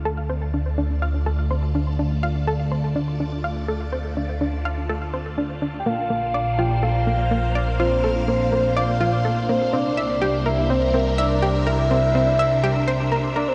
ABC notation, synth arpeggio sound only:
X:1
M:4/4
L:1/8
Q:1/4=124
K:Dm
V:1 name="Synth arpeggio sound"
A c D D f A c D | D f A c D D f A | c D D f A c D D | B, B, d F A B, B, d |
F A B, B, d F A B, | C e G B C C e G | B C C e G c B B |]